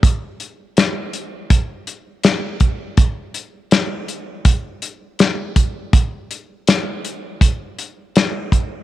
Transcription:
\new DrumStaff \with { instrumentName = "Drums" } \drummode { \time 4/4 \tempo 4 = 81 <hh bd>8 hh8 <hh sn>8 hh8 <hh bd>8 hh8 <hh sn>8 <hh bd>8 | <hh bd>8 hh8 <hh sn>8 hh8 <hh bd>8 hh8 <hh sn>8 <hh bd>8 | <hh bd>8 hh8 <hh sn>8 hh8 <hh bd>8 hh8 <hh sn>8 <hh bd>8 | }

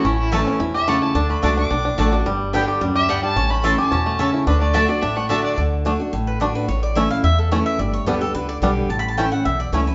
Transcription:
<<
  \new Staff \with { instrumentName = "Fiddle" } { \time 4/4 \key d \major \tempo 4 = 217 e'8 e'4 r4 e''8 fis''8 a''8~ | a''8 b''8 d'''8 d'''2 r8 | r2 r8 e''8 fis''8 a''8~ | a''8 b''8 c'''8 a''2 r8 |
b'8 d''8 e''8 d''8 e''8 fis''8 e''8 d''8 | r1 | r1 | r1 |
r1 | }
  \new Staff \with { instrumentName = "Mandolin" } { \time 4/4 \key d \major r4 <a e' cis'' a''>8 r4. <a e' cis'' a''>8 r8 | r4 <a fis' d'' a''>8 r4. <a fis' d'' a''>8 r8 | r4 <b g' d'' g''>8 r4. <b g' d'' g''>8 r8 | r4 <a e' cis'' a''>8 r4. <a e' cis'' a''>8 r8 |
r4 <a fis' d'' a''>8 r4. <a fis' d'' a''>8 r8 | r2 r8 b'8 d''8 b'8 | cis''8 d''8 e''8 f''8 e''8 a'8 cis''8 e''8 | d''8 cis''8 b'8 a'8 b'8 d''8 r4 |
\tuplet 3/2 { a''8 b''8 a''8 } g''8 fis''8 e''8 d''8 cis''8 b'8 | }
  \new Staff \with { instrumentName = "Five-string banjo" } { \time 4/4 \key d \major <a cis' e'>4 a8 cis'8 e'8 g'8 a8 e'8 | d'8 a8 d'8 d'8 d'8 d'8 d'8 d'8 | g4 d'8 g'8 g8 g'8 d'8 g8 | cis'8 a8 e'8 g'8 cis'8 a8 cis'8 e'8 |
d'8 a8 d'8 d'8 d'8 a8 d'8 d'8 | r4 <a d'>8 r4. <a d'>8 r8 | r4 <a cis' e'>8 r4. <a cis' e'>8 r8 | r4 <g b d'>8 r4. <g b d'>8 r8 |
r4 <a cis' e'>8 r4. <a cis' e'>8 r8 | }
  \new Staff \with { instrumentName = "Steel-string acoustic guitar" } { \time 4/4 \key d \major << { r4 <e a cis' e'>4 r2 | r4 <d a d' fis'>4 r4 <d a d' fis'>8 <d' fis'>8 | r4 <d g b g'>4 r2 | r4 <e a cis' e'>8 <cis' e'>8 r2 |
r4 <d a d' fis'>8 <d' fis'>8 r4 <d a d' fis'>4 | r4 <d a d' fis'>8 <d' fis'>8 r4 <d a d' fis'>8 <d' fis'>8 | r4 <e a cis' e'>8 <cis' e'>8 r4 <e a cis' e'>4 | r4 <d g b g'>8 <b g'>8 r4 <d g b g'>4 |
r4 <e a cis' e'>8 <cis' e'>8 r4 <e a cis' e'>8 <cis' e'>8 | } \\ { a,2 b,4 cis4 | d2 a,2 | g,2 fis,4 g,4 | a,2 b,4 cis4 |
d2 a,2 | d2 a,2 | a,2 e,2 | g,2 d2 |
a,2 e,2 | } >> }
  \new Staff \with { instrumentName = "Upright bass" } { \clef bass \time 4/4 \key d \major a,,2 e,2 | d,4 cis,4 b,,4 a,,4 | g,,2 d,2 | a,,2 e,2 |
d,2 a,,2 | d,2 a,,2 | a,,2 e,2 | g,,4 d,4 cis,4 b,,4 |
a,,2 b,,4 cis,4 | }
>>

